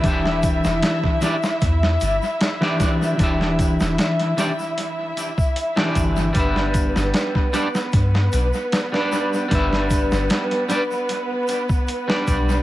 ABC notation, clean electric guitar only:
X:1
M:4/4
L:1/16
Q:1/4=76
K:Em
V:1 name="Clean electric guitar"
[E,DGe]6 [E,DGd] z6 [E,DGd]3 | [E,DGe]6 [E,DGd] z6 [E,DGd]3 | [G,DBe]6 [G,DBd] z6 [G,DBd]3 | [G,DBe]6 [G,DBd] z6 [G,DBd]3 |]